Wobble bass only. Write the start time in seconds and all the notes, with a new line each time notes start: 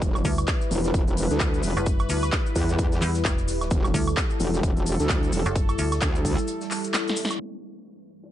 0.02 E1
0.71 E1
0.94 E1
1.31 D2
1.63 E1
2.56 E2
3.71 E1
4.40 E1
4.63 E1
5.00 D2
5.33 E1
6.02 D2